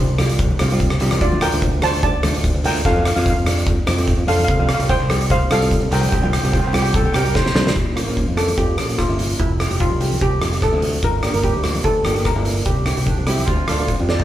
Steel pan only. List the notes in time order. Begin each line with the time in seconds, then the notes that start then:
Already playing: E4 C5
1.22 F4 D5
1.42 A#4 G5
1.83 C5 A5
2.03 D5 A5
2.65 A#4 G5
2.86 A4 F5
2.93 F5
3.01 F5
3.08 F5
3.16 F5
3.23 F5
3.30 F5
4.28 A4 F5
4.37 F5
4.44 F5
4.51 F5
4.60 F5
4.66 F5
4.74 F5
4.90 C5 G5
5.31 C5 F5
5.52 A4 F5
5.93 A#4 G5
6.01 G5
6.09 G5
6.15 G5
6.23 G5
6.30 G5
6.39 G5
6.47 G5
6.52 G5
6.60 G5
6.67 G5
6.74 G5
6.82 G5
6.90 G5
6.97 G5
7.05 G5
7.13 G5
7.19 G5
8.37 A4
8.58 G4
8.98 F4
9.40 E4
9.81 F4
10.22 G4
10.63 A4
11.04 A#4
11.44 G4
11.85 A4
12.26 A#4
12.66 G4
14.10 D5